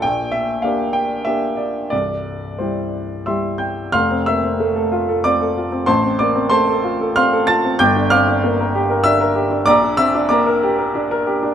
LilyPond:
\new Staff \with { instrumentName = "Upright piano" } { \time 3/4 \key f \major \tempo 4 = 94 << { g''8 e''8 f''8 g''8 e''8 d''8 | d''4 c''4 <e'' c''' e'''>8 <g'' g'''>8 | <f'' c''' f'''>8 <e'' e'''>4. <d'' d'''>4 | <c'' a'' c'''>8 <d'' d'''>8 <c'' a'' c'''>4 <f'' c''' f'''>8 <a'' a'''>8 |
<g'' d''' g'''>8 <f'' d''' f'''>4. <e'' e'''>4 | <d'' bes'' d'''>8 <e'' e'''>8 <d'' bes'' d'''>4 r4 | } \\ { <bes,, bes,>4 <bes d' g'>4 <bes d' g'>4 | <c,, c,>4 <g e' g'>4 <g e' g'>4 | f,,16 c'16 bes16 c'16 a16 a'16 f'16 a'16 c'16 a'16 f'16 c'16 | a,,16 c'16 bes16 c'16 a16 a'16 f'16 a'16 c'16 a'16 f'16 c'16 |
g,,16 d'16 c'16 d'16 bes16 bes'16 g'16 bes'16 d'16 bes'16 g'16 d'16 | bes,,16 d'16 c'16 d'16 bes16 bes'16 g'16 bes'16 d'16 bes'16 g'16 d'16 | } >> }